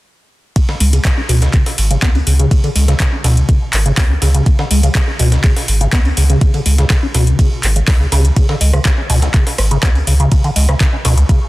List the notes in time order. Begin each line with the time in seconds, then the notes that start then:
0.56 C#3, kick, closed hi-hat, ride
0.69 D3, snare
0.80 C#2 G#3, open hi-hat, ride
0.93 C#3, closed hi-hat, ride
1.05 C#3, kick, snare, clap, closed hi-hat, ride
1.17 C#4
1.29 C#2 B2, open hi-hat, ride
1.42 C#3, snare, closed hi-hat
1.53 C#3, kick, clap, closed hi-hat, ride
1.66 snare, open hi-hat
1.78 G#1, open hi-hat, ride
1.91 C#3, closed hi-hat
2.02 C#2 B3, kick, snare, clap, closed hi-hat, ride
2.15 C#4, ride
2.27 C#2 C#3, open hi-hat, ride
2.39 C#3, closed hi-hat
2.51 C#3, kick, closed hi-hat, ride
2.64 D3, ride
2.75 C#2 G#3, open hi-hat, ride
2.88 C#3, snare, closed hi-hat
3.00 C#3, kick, snare, clap, closed hi-hat, ride
3.13 C#4
3.24 C#2 B2, snare, open hi-hat, ride
3.37 C#3, closed hi-hat
3.49 C#3, kick, closed hi-hat, ride
3.73 G#1, clap, open hi-hat, ride
3.86 C#3, closed hi-hat
3.97 C#2 B3, kick, snare, clap, open hi-hat, ride
4.10 C#4
4.22 C#2 C#3, snare, open hi-hat, ride
4.34 C#3, closed hi-hat
4.46 C#3, kick, closed hi-hat, ride
4.59 D3, snare
4.71 C#2 G#3, open hi-hat, ride
4.83 C#3, closed hi-hat, ride
4.95 C#3, kick, snare, clap, closed hi-hat, ride
5.08 C#4
5.19 C#2 B2, open hi-hat, ride
5.32 C#3, snare, closed hi-hat
5.44 C#3, kick, clap, closed hi-hat, ride
5.56 snare, open hi-hat
5.68 G#1, open hi-hat, ride
5.81 C#3, closed hi-hat
5.93 C#2 B3, kick, snare, clap, closed hi-hat, ride
6.05 C#4, ride
6.17 C#2 C#3, open hi-hat, ride
6.30 C#3, closed hi-hat
6.41 C#3, kick, closed hi-hat, ride
6.54 D3, ride
6.66 C#2 G#3, open hi-hat, ride
6.78 C#3, snare, closed hi-hat
6.90 C#3, kick, snare, clap, closed hi-hat, ride
7.03 C#4
7.14 C#2 B2, snare, open hi-hat, ride
7.27 C#3, closed hi-hat
7.39 C#3, kick, closed hi-hat, ride
7.63 G#1, clap, open hi-hat, ride
7.76 C#3, closed hi-hat
7.88 C#2 F#3, kick, snare, clap, open hi-hat, ride
8.00 C#3
8.12 C#2 C#3, snare, open hi-hat, ride
8.25 E3, closed hi-hat
8.36 C#3, kick, closed hi-hat, ride
8.49 D3, snare
8.61 C#2 G#3, open hi-hat, ride
8.73 C#3, cross-stick, closed hi-hat, ride
8.85 C#3, kick, snare, clap, closed hi-hat, ride
8.98 C#4
9.10 C#2 B2, open hi-hat, ride
9.22 C#2, snare, closed hi-hat
9.34 C#3, kick, clap, closed hi-hat, ride
9.47 snare, open hi-hat
9.58 G#1, cross-stick, open hi-hat, ride
9.71 C#3, closed hi-hat
9.83 C#2 B3, kick, snare, clap, closed hi-hat, ride
9.95 C#4, ride
10.07 C#2 C#3, open hi-hat, ride
10.20 C#3, closed hi-hat
10.32 C#3, kick, closed hi-hat, ride
10.44 D3, ride
10.56 C#2 G#3, open hi-hat, ride
10.69 C#3, cross-stick, snare, closed hi-hat
10.80 C#3, kick, snare, clap, closed hi-hat, ride
10.93 C#4
11.05 C#2 B2, snare, open hi-hat, ride
11.17 C#2, closed hi-hat
11.29 C#3, kick, closed hi-hat, ride